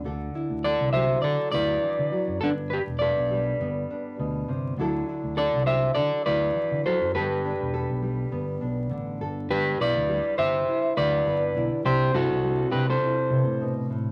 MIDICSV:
0, 0, Header, 1, 4, 480
1, 0, Start_track
1, 0, Key_signature, 1, "major"
1, 0, Tempo, 591133
1, 35, Time_signature, 4, 2, 24, 8
1, 6275, Tempo, 586510
1, 11504, End_track
2, 0, Start_track
2, 0, Title_t, "Clean electric guitar"
2, 0, Program_c, 0, 27
2, 523, Note_on_c, 0, 74, 97
2, 528, Note_on_c, 0, 69, 75
2, 746, Note_off_c, 0, 69, 0
2, 749, Note_off_c, 0, 74, 0
2, 752, Note_on_c, 0, 76, 91
2, 760, Note_on_c, 0, 72, 78
2, 982, Note_off_c, 0, 72, 0
2, 986, Note_off_c, 0, 76, 0
2, 989, Note_on_c, 0, 74, 96
2, 1007, Note_on_c, 0, 69, 75
2, 1221, Note_off_c, 0, 74, 0
2, 1226, Note_off_c, 0, 69, 0
2, 1230, Note_on_c, 0, 74, 108
2, 1253, Note_on_c, 0, 71, 74
2, 1923, Note_off_c, 0, 74, 0
2, 1934, Note_off_c, 0, 71, 0
2, 1954, Note_on_c, 0, 69, 101
2, 1977, Note_on_c, 0, 62, 75
2, 2020, Note_off_c, 0, 69, 0
2, 2039, Note_off_c, 0, 62, 0
2, 2193, Note_on_c, 0, 71, 81
2, 2220, Note_on_c, 0, 67, 65
2, 2259, Note_off_c, 0, 71, 0
2, 2282, Note_off_c, 0, 67, 0
2, 2427, Note_on_c, 0, 74, 86
2, 2450, Note_on_c, 0, 71, 68
2, 3361, Note_off_c, 0, 74, 0
2, 3373, Note_off_c, 0, 71, 0
2, 4361, Note_on_c, 0, 69, 84
2, 4367, Note_on_c, 0, 74, 94
2, 4584, Note_off_c, 0, 69, 0
2, 4586, Note_off_c, 0, 74, 0
2, 4598, Note_on_c, 0, 72, 75
2, 4602, Note_on_c, 0, 76, 94
2, 4822, Note_off_c, 0, 72, 0
2, 4824, Note_off_c, 0, 76, 0
2, 4828, Note_on_c, 0, 74, 97
2, 4833, Note_on_c, 0, 69, 79
2, 5059, Note_off_c, 0, 69, 0
2, 5072, Note_off_c, 0, 74, 0
2, 5081, Note_on_c, 0, 71, 81
2, 5083, Note_on_c, 0, 74, 102
2, 5528, Note_off_c, 0, 71, 0
2, 5528, Note_off_c, 0, 74, 0
2, 5569, Note_on_c, 0, 72, 87
2, 5573, Note_on_c, 0, 69, 71
2, 5789, Note_off_c, 0, 69, 0
2, 5801, Note_off_c, 0, 72, 0
2, 5804, Note_on_c, 0, 71, 87
2, 5812, Note_on_c, 0, 67, 66
2, 7452, Note_off_c, 0, 71, 0
2, 7456, Note_off_c, 0, 67, 0
2, 7729, Note_on_c, 0, 67, 79
2, 7729, Note_on_c, 0, 71, 113
2, 7949, Note_off_c, 0, 71, 0
2, 7950, Note_off_c, 0, 67, 0
2, 7979, Note_on_c, 0, 71, 79
2, 7983, Note_on_c, 0, 74, 96
2, 8420, Note_off_c, 0, 71, 0
2, 8420, Note_off_c, 0, 74, 0
2, 8445, Note_on_c, 0, 72, 90
2, 8452, Note_on_c, 0, 76, 109
2, 8893, Note_off_c, 0, 72, 0
2, 8928, Note_off_c, 0, 76, 0
2, 8928, Note_on_c, 0, 71, 89
2, 8932, Note_on_c, 0, 74, 109
2, 9613, Note_off_c, 0, 71, 0
2, 9652, Note_off_c, 0, 74, 0
2, 9653, Note_on_c, 0, 67, 82
2, 9655, Note_on_c, 0, 72, 112
2, 9871, Note_off_c, 0, 67, 0
2, 9891, Note_on_c, 0, 66, 72
2, 9895, Note_off_c, 0, 72, 0
2, 9896, Note_on_c, 0, 69, 90
2, 10333, Note_off_c, 0, 66, 0
2, 10336, Note_off_c, 0, 69, 0
2, 10356, Note_on_c, 0, 67, 71
2, 10361, Note_on_c, 0, 71, 84
2, 10481, Note_off_c, 0, 67, 0
2, 10495, Note_off_c, 0, 71, 0
2, 10505, Note_on_c, 0, 69, 63
2, 10509, Note_on_c, 0, 72, 77
2, 11184, Note_off_c, 0, 69, 0
2, 11186, Note_off_c, 0, 72, 0
2, 11504, End_track
3, 0, Start_track
3, 0, Title_t, "Nylon-string guitar"
3, 0, Program_c, 1, 24
3, 0, Note_on_c, 1, 62, 61
3, 43, Note_on_c, 1, 50, 74
3, 47, Note_on_c, 1, 69, 75
3, 282, Note_off_c, 1, 62, 0
3, 286, Note_on_c, 1, 64, 63
3, 525, Note_off_c, 1, 69, 0
3, 528, Note_on_c, 1, 69, 71
3, 758, Note_on_c, 1, 54, 61
3, 1016, Note_on_c, 1, 62, 61
3, 1236, Note_off_c, 1, 64, 0
3, 1246, Note_on_c, 1, 64, 64
3, 1482, Note_off_c, 1, 50, 0
3, 1487, Note_on_c, 1, 52, 68
3, 1708, Note_off_c, 1, 54, 0
3, 1718, Note_on_c, 1, 54, 69
3, 1723, Note_off_c, 1, 52, 0
3, 1937, Note_off_c, 1, 64, 0
3, 1959, Note_off_c, 1, 54, 0
3, 1961, Note_on_c, 1, 43, 78
3, 1968, Note_off_c, 1, 62, 0
3, 1968, Note_on_c, 1, 62, 67
3, 1985, Note_off_c, 1, 69, 0
3, 2206, Note_off_c, 1, 62, 0
3, 2209, Note_on_c, 1, 62, 67
3, 2447, Note_on_c, 1, 69, 70
3, 2687, Note_on_c, 1, 55, 66
3, 2931, Note_on_c, 1, 59, 59
3, 3167, Note_off_c, 1, 62, 0
3, 3171, Note_on_c, 1, 62, 59
3, 3400, Note_off_c, 1, 43, 0
3, 3404, Note_on_c, 1, 47, 70
3, 3641, Note_on_c, 1, 48, 69
3, 3642, Note_off_c, 1, 47, 0
3, 3858, Note_off_c, 1, 55, 0
3, 3860, Note_off_c, 1, 59, 0
3, 3880, Note_off_c, 1, 48, 0
3, 3883, Note_on_c, 1, 50, 75
3, 3890, Note_on_c, 1, 54, 64
3, 3894, Note_off_c, 1, 62, 0
3, 3894, Note_on_c, 1, 62, 66
3, 3902, Note_on_c, 1, 64, 70
3, 3904, Note_off_c, 1, 69, 0
3, 3907, Note_on_c, 1, 69, 70
3, 4124, Note_off_c, 1, 64, 0
3, 4134, Note_on_c, 1, 64, 68
3, 4365, Note_off_c, 1, 69, 0
3, 4369, Note_on_c, 1, 69, 63
3, 4587, Note_off_c, 1, 54, 0
3, 4597, Note_on_c, 1, 54, 58
3, 4842, Note_off_c, 1, 62, 0
3, 4845, Note_on_c, 1, 62, 62
3, 5076, Note_off_c, 1, 64, 0
3, 5086, Note_on_c, 1, 64, 65
3, 5318, Note_off_c, 1, 50, 0
3, 5322, Note_on_c, 1, 52, 66
3, 5557, Note_off_c, 1, 54, 0
3, 5560, Note_off_c, 1, 52, 0
3, 5567, Note_on_c, 1, 54, 73
3, 5776, Note_off_c, 1, 64, 0
3, 5777, Note_off_c, 1, 69, 0
3, 5801, Note_on_c, 1, 43, 83
3, 5803, Note_off_c, 1, 54, 0
3, 5809, Note_on_c, 1, 69, 72
3, 6049, Note_off_c, 1, 62, 0
3, 6049, Note_on_c, 1, 62, 61
3, 6273, Note_off_c, 1, 69, 0
3, 6282, Note_on_c, 1, 69, 67
3, 6516, Note_on_c, 1, 55, 58
3, 6759, Note_on_c, 1, 59, 61
3, 6987, Note_off_c, 1, 62, 0
3, 6997, Note_on_c, 1, 62, 61
3, 7236, Note_on_c, 1, 50, 65
3, 7480, Note_off_c, 1, 69, 0
3, 7489, Note_on_c, 1, 69, 73
3, 7694, Note_off_c, 1, 50, 0
3, 7695, Note_off_c, 1, 55, 0
3, 7696, Note_off_c, 1, 59, 0
3, 7700, Note_off_c, 1, 69, 0
3, 7716, Note_off_c, 1, 43, 0
3, 7726, Note_on_c, 1, 43, 81
3, 7972, Note_off_c, 1, 62, 0
3, 7976, Note_on_c, 1, 64, 68
3, 8208, Note_on_c, 1, 55, 72
3, 8691, Note_off_c, 1, 64, 0
3, 8695, Note_on_c, 1, 64, 63
3, 8931, Note_on_c, 1, 50, 78
3, 9173, Note_on_c, 1, 71, 71
3, 9415, Note_off_c, 1, 64, 0
3, 9418, Note_on_c, 1, 64, 66
3, 9621, Note_off_c, 1, 50, 0
3, 9622, Note_off_c, 1, 71, 0
3, 9645, Note_off_c, 1, 43, 0
3, 9648, Note_on_c, 1, 48, 81
3, 9652, Note_off_c, 1, 55, 0
3, 9656, Note_on_c, 1, 55, 74
3, 9661, Note_on_c, 1, 62, 72
3, 9662, Note_off_c, 1, 64, 0
3, 9665, Note_on_c, 1, 64, 68
3, 9890, Note_off_c, 1, 64, 0
3, 9893, Note_on_c, 1, 64, 68
3, 10124, Note_off_c, 1, 55, 0
3, 10127, Note_on_c, 1, 55, 70
3, 10615, Note_off_c, 1, 64, 0
3, 10618, Note_on_c, 1, 64, 61
3, 10848, Note_on_c, 1, 43, 67
3, 11083, Note_off_c, 1, 43, 0
3, 11086, Note_on_c, 1, 47, 71
3, 11322, Note_off_c, 1, 47, 0
3, 11327, Note_on_c, 1, 45, 70
3, 11504, Note_off_c, 1, 45, 0
3, 11504, Note_off_c, 1, 48, 0
3, 11504, Note_off_c, 1, 55, 0
3, 11504, Note_off_c, 1, 62, 0
3, 11504, Note_off_c, 1, 64, 0
3, 11504, End_track
4, 0, Start_track
4, 0, Title_t, "Fingered electric bass"
4, 0, Program_c, 2, 33
4, 35, Note_on_c, 2, 38, 103
4, 225, Note_off_c, 2, 38, 0
4, 405, Note_on_c, 2, 38, 83
4, 596, Note_off_c, 2, 38, 0
4, 645, Note_on_c, 2, 36, 85
4, 922, Note_off_c, 2, 36, 0
4, 997, Note_on_c, 2, 50, 96
4, 1101, Note_off_c, 2, 50, 0
4, 1240, Note_on_c, 2, 38, 93
4, 1429, Note_off_c, 2, 38, 0
4, 1614, Note_on_c, 2, 50, 83
4, 1698, Note_off_c, 2, 50, 0
4, 1848, Note_on_c, 2, 42, 102
4, 1935, Note_off_c, 2, 42, 0
4, 1959, Note_on_c, 2, 31, 99
4, 2253, Note_off_c, 2, 31, 0
4, 2332, Note_on_c, 2, 28, 86
4, 2521, Note_off_c, 2, 28, 0
4, 2571, Note_on_c, 2, 35, 88
4, 2847, Note_off_c, 2, 35, 0
4, 2920, Note_on_c, 2, 31, 106
4, 3110, Note_off_c, 2, 31, 0
4, 3405, Note_on_c, 2, 38, 97
4, 3593, Note_off_c, 2, 38, 0
4, 3644, Note_on_c, 2, 31, 86
4, 3832, Note_off_c, 2, 31, 0
4, 3876, Note_on_c, 2, 38, 105
4, 4067, Note_off_c, 2, 38, 0
4, 4251, Note_on_c, 2, 38, 87
4, 4441, Note_off_c, 2, 38, 0
4, 4495, Note_on_c, 2, 36, 83
4, 4769, Note_off_c, 2, 36, 0
4, 4845, Note_on_c, 2, 50, 90
4, 4947, Note_off_c, 2, 50, 0
4, 5088, Note_on_c, 2, 38, 96
4, 5274, Note_off_c, 2, 38, 0
4, 5454, Note_on_c, 2, 50, 83
4, 5538, Note_off_c, 2, 50, 0
4, 5694, Note_on_c, 2, 42, 98
4, 5778, Note_off_c, 2, 42, 0
4, 5812, Note_on_c, 2, 31, 100
4, 6099, Note_off_c, 2, 31, 0
4, 6178, Note_on_c, 2, 28, 85
4, 6364, Note_off_c, 2, 28, 0
4, 6413, Note_on_c, 2, 35, 84
4, 6689, Note_off_c, 2, 35, 0
4, 6764, Note_on_c, 2, 31, 106
4, 6952, Note_off_c, 2, 31, 0
4, 6998, Note_on_c, 2, 35, 85
4, 7216, Note_off_c, 2, 35, 0
4, 7242, Note_on_c, 2, 33, 92
4, 7459, Note_off_c, 2, 33, 0
4, 7484, Note_on_c, 2, 31, 81
4, 7700, Note_off_c, 2, 31, 0
4, 7727, Note_on_c, 2, 31, 100
4, 7916, Note_off_c, 2, 31, 0
4, 7963, Note_on_c, 2, 35, 91
4, 8067, Note_off_c, 2, 35, 0
4, 8098, Note_on_c, 2, 38, 90
4, 8286, Note_off_c, 2, 38, 0
4, 8444, Note_on_c, 2, 31, 101
4, 8634, Note_off_c, 2, 31, 0
4, 8930, Note_on_c, 2, 38, 102
4, 9117, Note_off_c, 2, 38, 0
4, 9164, Note_on_c, 2, 31, 107
4, 9354, Note_off_c, 2, 31, 0
4, 9401, Note_on_c, 2, 35, 94
4, 9505, Note_off_c, 2, 35, 0
4, 9643, Note_on_c, 2, 36, 93
4, 9832, Note_off_c, 2, 36, 0
4, 9884, Note_on_c, 2, 43, 94
4, 9987, Note_off_c, 2, 43, 0
4, 10015, Note_on_c, 2, 36, 99
4, 10289, Note_off_c, 2, 36, 0
4, 10365, Note_on_c, 2, 48, 113
4, 10553, Note_off_c, 2, 48, 0
4, 10840, Note_on_c, 2, 48, 114
4, 10943, Note_off_c, 2, 48, 0
4, 10971, Note_on_c, 2, 45, 96
4, 11435, Note_off_c, 2, 45, 0
4, 11504, End_track
0, 0, End_of_file